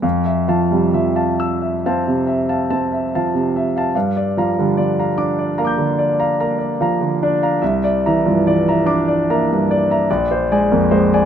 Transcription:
<<
  \new Staff \with { instrumentName = "Grand piano" } { \time 9/8 \key f \major \tempo 4. = 48 << { r1 r8 | r2 <f'' bes'' d''' g'''>2~ <f'' bes'' d''' g'''>8 | r1 r8 | } \\ { f''16 e''16 <f'' a''>16 c16 e''16 <f'' a''>16 e'''16 e''16 <f'' a''>16 c16 e''16 <f'' a''>16 a''16 e''16 <f'' a''>16 c16 e''16 <f'' a''>16 | f''16 d''16 <f'' bes''>16 d16 d''16 <f'' bes''>16 d'''16 d''16 bes''16 d16 d''16 <f'' bes''>16 bes''16 d''16 <f'' bes''>16 d16 d''16 <f'' bes''>16 | e''16 d''16 <e'' bes''>16 g,16 d''16 <e'' bes''>16 d'''16 d''16 <e'' bes''>16 g,16 d''16 <e'' bes''>16 d''16 c''16 <d'' aes''>16 f,16 c''16 <d'' aes''>16 | } >> }
  \new Staff \with { instrumentName = "Grand piano" } { \clef bass \time 9/8 \key f \major f,8 f16 g16 f8 r8 c'8 r8 c'8 f8 r8 | g,8 f16 g16 f8 d'8 bes8 r8 bes8 f8 d'8 | c,8 e16 f16 e8 d'8 bes8 r8 bes,,8 aes16 bes16 aes8 | }
>>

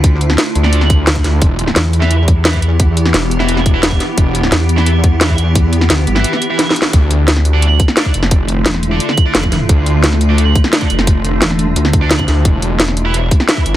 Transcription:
<<
  \new Staff \with { instrumentName = "Distorted electric guitar" } { \time 4/4 \key d \dorian \tempo 4 = 174 r4. r16 <d' a' d''>8 r4. r16 | r4. r16 <e' b' e''>16 r4 <e' b' e''>16 r8. | r4. r16 <e' b' e''>8 r8 <e' b' e''>16 r4 | r4. r16 <e' b' e''>16 r4 <e' b' e''>16 r8. |
r4. r16 <e' b' e''>8 r8 <e' b' e''>16 r4 | r4. r16 <d' a' d''>16 r4 <d' a' d''>16 r8. | r4. r16 <d' a' d''>8 r8 <d' a' d''>16 r4 | r4. r16 <d' a' d''>16 r4 <d' a' d''>16 r8. |
r2 r8. <d' a' d''>16 r4 | r4. r16 <e' b' e''>16 r4 <e' b' e''>16 r8. | }
  \new Staff \with { instrumentName = "Synth drone" } { \time 4/4 \key d \dorian << { <d a f'>1 | <e b g'>1~ | <e b g'>1~ | <e b g'>1~ |
<e b g'>1 | <d a f'>1~ | <d a f'>1~ | <d a f'>1~ |
<d a f'>1 | <e b g'>1 | } \\ { e'1 | e'1~ | e'1~ | e'1~ |
e'1 | e'1~ | e'1 | d'1~ |
d'1 | e'1 | } >> }
  \new Staff \with { instrumentName = "Wobble bass" } { \clef bass \time 4/4 \key d \dorian d,4 r2 d,8 r8 | r4 e,2.~ | e,4 r2. | r4 e,2.~ |
e,4 d,8 g,,8 r2 | r1 | r4 e,,4 r4 f,,4 | r1 |
r4 e,,4 d,4. r8 | r1 | }
  \new Staff \with { instrumentName = "Detuned saw bass" } { \clef bass \time 4/4 \key d \dorian r4. d,4. r8 d,8 | e,,4 r2. | r4 e,,2~ e,,8 r8 | e,,4 r2. |
r1 | d,2~ d,8 r4 f,,8~ | f,,4 r2. | d,2~ d,8 r4 f,,8~ |
f,,4 r2 r8 d,8 | e,,2~ e,,8 r4 g,,8 | }
  \new DrumStaff \with { instrumentName = "Drums" } \drummode { \time 4/4 <hh bd>8 hh16 sn16 <hh sn>8 hh16 sn16 hh16 sn16 <hh bd>8 <hh sn>16 bd16 <hh sn>8 | <hh bd>8 hh16 sn16 <hh sn>8 hh16 sn16 hh8 <hh bd>8 <hh sn>16 bd16 hh8 | <hh bd>8 hh16 sn16 <hh sn>8 hh16 sn16 hh16 sn16 <hh bd>8 <hh sn>16 bd16 <hh sn>8 | <hh bd>8 hh16 sn16 <hh sn>8 hh16 sn16 hh8 <hh bd>8 <hh sn>16 bd16 hh8 |
<hh bd>8 hh16 sn16 <hh sn>8 hh16 sn16 hh16 sn16 hh8 \tuplet 3/2 { <hh sn>16 r16 sn16 hh16 sn16 r16 } | <hh bd>8 hh8 <hh sn>16 sn16 hh8 hh8 <hh bd>16 sn16 <hh sn>16 bd16 hh16 sn16 | <hh bd>8 hh8 <hh sn>16 sn16 hh8 hh16 sn16 <hh bd>8 <hh sn>16 <bd sn>16 <hh sn>8 | <hh bd>8 hh8 <hh sn>16 sn16 hh8 hh8 <hh bd>16 sn16 <hh sn>16 bd16 hh16 sn16 |
<hh bd>8 hh8 <hh sn>16 sn16 hh8 hh16 sn16 <hh bd>8 <hh sn>16 <bd sn>16 <hh sn>8 | <hh bd>8 hh8 <hh sn>16 sn16 hh8 hh8 <hh bd>16 sn16 <hh sn>16 bd16 hh8 | }
>>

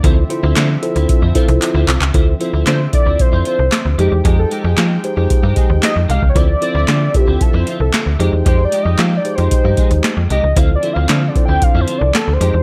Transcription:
<<
  \new Staff \with { instrumentName = "Soft synth lead" } { \time 4/4 \key f \lydian \tempo 4 = 114 r1 | r4 c''8 d''8 c''8 c''4 g'8 | aes'16 a'8 aes'8 r4. r16 ees''8 f''16. cis''32 | d''8 d''4 g'8 a'16 c''8 a'8 r8. |
\tuplet 3/2 { c''8 d''8 ees''8 f''8 d''8 c''8~ } c''4~ c''32 r16. ees''8 | \tuplet 3/2 { f''8 d''8 f''8~ f''8 d''8 g''8 f''8 c''8 d''8 a'8 c''4 } | }
  \new Staff \with { instrumentName = "Tine electric piano" } { \time 4/4 \key f \lydian <e' f' a' c''>16 r16 <e' f' a' c''>8. r16 <e' f' a' c''>8. r16 <e' f' a' c''>4 r8 | <e' f' a' c''>16 r16 <e' f' a' c''>8. r16 <e' f' a' d''>4. r8 <ees' g' aes' c''>8~ | <ees' g' aes' c''>4 r8 <ees' g' aes' c''>16 <ees' g' aes' c''>4. r8. | <e' f' a' c''>16 r16 <e' f' a' c''>8. r16 <e' f' a' b' c''>4. r8 <ees' g' aes' c''>8~ |
<ees' g' aes' c''>4 r8 <ees' g' aes' c''>16 <ees' g' aes'>4. r8. | <e' f' a' c''>16 r16 <e' f' a' c''>8. r16 <e' f' a' c''>4. r8 <ees' g' aes' c''>8 | }
  \new Staff \with { instrumentName = "Clean electric guitar" } { \time 4/4 \key f \lydian <f c' e'>16 r8 <f c' e'>16 <f c' e'>16 r8 <f c' e'>16 r16 <f c' e'>16 <f c' f'>16 r8 <f c' e'>16 <f c' f'>16 r16 | <f c' e'>16 r16 <f c' e'>16 <f c' e'>16 <f c' e'>16 r8 <f c' e'>16 r16 <f c' e'>16 <f c' f'>16 r8. <aes ees' g'>16 r16 | <aes ees' g'>16 r16 <aes ees' g'>16 <aes ees' g'>16 <aes ees' g'>16 r8 <aes ees' g'>16 r16 <aes ees' g'>16 <aes ees' aes'>16 r8. <aes ees' g'>16 r16 | <f c' e'>16 r16 <f c' e'>16 <f c' e'>16 <f c' e'>16 r8 <f c' e'>16 r16 <f c' e'>16 <f c' f'>16 r8. <aes ees' g'>16 r16 |
<aes ees' g'>16 r16 <aes ees' g'>16 <aes ees' g'>16 <aes ees' g'>16 r8 <aes ees' g'>16 r16 <aes ees' g'>16 <aes ees' aes'>16 r8. <aes ees' g'>16 r16 | <f c' e'>16 r16 <f c' e'>16 <f c' e'>16 <f c' e'>16 r8 <f c' e'>16 r16 <f c' e'>16 <f c' f'>16 r8. <aes ees' g'>16 r16 | }
  \new Staff \with { instrumentName = "Analog synth pad" } { \time 4/4 \key f \lydian <d f c' e''>1 | <d f c' e''>2.~ <d f c' e''>8 <f aes ees' g''>8~ | <f aes ees' g''>1 | <d f c' e''>2.~ <d f c' e''>8 <f aes ees' g''>8~ |
<f aes ees' g''>1 | <d f c' d'>2.~ <d f c' d'>8 <f aes ees' g''>8 | }
  \new Staff \with { instrumentName = "FM bass" } { \clef bass \time 4/4 \key f \lydian d,8 r16 d,16 d8 r16 d,16 r16 f,16 r16 c,16 r16 d,16 c,16 cis,16 | d,8 r16 d,16 d8 r16 d,16 r16 f,16 r16 c,16 r16 d,16 f,16 e,16 | f,8 r16 f,16 f8 r16 f,16 r16 g,16 r16 ees,16 r16 f,16 c,16 cis,16 | d,8 r16 d,16 d8 r16 d,16 r16 f,16 r16 c,16 r16 d,16 f,16 e,16 |
f,8 r16 f,16 f8 r16 f,16 r16 g,16 r16 ees,16 r16 f,16 c,16 cis,16 | d,8 r16 d,16 d8 r16 d,16 r16 f,16 r16 c,16 r16 d,16 f,16 e,16 | }
  \new DrumStaff \with { instrumentName = "Drums" } \drummode { \time 4/4 <hh bd>8 hh8 <hc hh sn>8 hh16 hh16 <hh bd>8 <hh bd>16 hh16 <hc hh>8 <hc hh>16 hc16 | <hh bd>8 hh8 <hc hh sn>8 <hh bd>8 <hh bd>8 hh8 <hc hh sn>8 hh8 | <hh bd>8 hh8 <hc hh sn>8 hh8 <hh bd>8 <hh bd>8 <hc hh sn>8 hh16 bd16 | <hh bd>8 hh8 <hc hh sn>8 <hh bd>8 <hh bd>8 hh8 <hc hh sn>8 hh8 |
<hh bd>8 hh8 <hc hh sn>8 hh16 hh16 <hh bd>8 <hh bd>16 hh16 <hc hh sn>8 hh8 | <hh bd>8 hh8 <hc hh sn>8 <hh bd>8 <hh bd>8 hh8 <hc hh sn>8 hh8 | }
>>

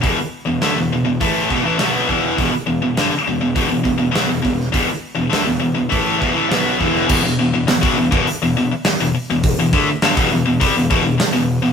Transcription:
<<
  \new Staff \with { instrumentName = "Distorted electric guitar" } { \clef bass \time 4/4 \key c \lydian \tempo 4 = 102 <e, b,>16 r8 <e, b,>16 <d a>16 <e, b,>16 <e, b,>16 <e, b,>16 <a, e a>8 <e, b,>16 <a, e>16 <b, fis b>8 <e, b, e>8 | <e, b,>16 r16 <e, b,>16 <e, b,>16 <g, d>16 r16 <e, b,>16 <e, b,>16 <e, b,>16 <e, b,>16 <e, b,>16 <e, b,>16 <b, fis>16 <e, b,>16 <e, b,>8 | <e, b,>16 r8 <e, b,>16 <d a>16 <e, b,>16 <e, b,>16 <e, b,>16 <a, e a>8 <e, b,>16 <a, e>16 <b, fis b>8 <e, b, e>8 | <e, b,>16 <e, b,>16 <e, b,>16 <e, b,>16 <e, b,>16 <b, fis>16 <e, b,>16 <e, b,>16 r16 <e, b,>16 <e, b,>16 r8 <e, b,>16 r16 <e, b,>16~ |
<e, b,>16 <e, b,>16 <d a>16 r16 <g, d>16 <e, b,>16 <e, b,>16 <e, b,>16 <c g>16 <e, b,>16 <e, b,>16 <e, b,>16 r16 <e, b,>8 <e, b,>16 | }
  \new Staff \with { instrumentName = "Overdriven electric guitar" } { \clef bass \time 4/4 \key c \lydian <e, b,>16 r8 <e, b,>16 <d a>16 <e, b,>16 <e, b,>16 <e, b,>16 <a, e a>8 <e, b,>16 <a, e>16 <b, fis b>8 <e, b, e>8 | <e, b,>16 r16 <e, b,>16 <e, b,>16 <g, d>16 r16 <e, b,>16 <e, b,>16 <e, b,>16 <e, b,>16 <e, b,>16 <e, b,>16 <b, fis>16 <e, b,>16 <e, b,>8 | <e, b,>16 r8 <e, b,>16 <d a>16 <e, b,>16 <e, b,>16 <e, b,>16 <a, e a>8 <e, b,>16 <a, e>16 <b, fis b>8 <e, b, e>8 | r1 |
r1 | }
  \new Staff \with { instrumentName = "Picked electric bass" } { \clef bass \time 4/4 \key c \lydian e,,16 r8 e,,16 d,16 e,,16 e,,16 e,,16 a,,8 e,,16 a,,16 b,,8 e,,8 | e,,16 r16 e,,16 e,,16 g,,16 r16 e,,16 e,,16 e,,16 e,,16 e,,16 e,,16 b,,16 e,,16 e,,8 | e,,16 r8 e,,16 d,16 e,,16 e,,16 e,,16 a,,8 e,,16 a,,16 b,,8 e,,8 | e,,16 e,,16 e,,16 e,,16 e,,16 b,,16 e,,16 e,,16 r16 e,,16 e,,16 r8 e,,16 r16 e,,16~ |
e,,16 e,,16 d,16 r16 g,,16 e,,16 e,,16 e,,16 c,16 e,,16 e,,16 e,,16 r16 e,,8 e,,16 | }
  \new DrumStaff \with { instrumentName = "Drums" } \drummode { \time 4/4 <hho bd>4 <hho sn>4 <hho bd>8 bd8 <hho sn>8 bd8 | <hho bd>4 <hho sn>4 <hho bd>8 bd8 <hho sn>8 bd16 sn16 | <hho bd>4 <hho sn>4 <hho bd>8 bd8 <hho sn>8 bd16 sn16 | <cymc bd>4 <hho sn>16 <bd sn>8 bd16 hho4 <hho sn>8. sn16 |
<hho bd>8 bd8 <hho sn>16 <bd sn>8. <hho bd>8 bd8 <hho sn>8. sn16 | }
>>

